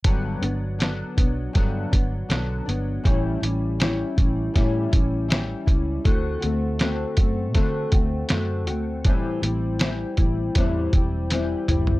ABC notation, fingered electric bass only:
X:1
M:4/4
L:1/8
Q:1/4=80
K:G
V:1 name="Fingered electric bass" clef=bass
G,,, G,,,2 B,,, G,, G,,, B,,, G,,, | A,,, A,,,2 A,,, A,, A,,,2 ^C,, | D,, D,,2 F,, D, D,, F,, D,, | A,,, A,,,2 A,,, E,, E,,,2 F,,, |]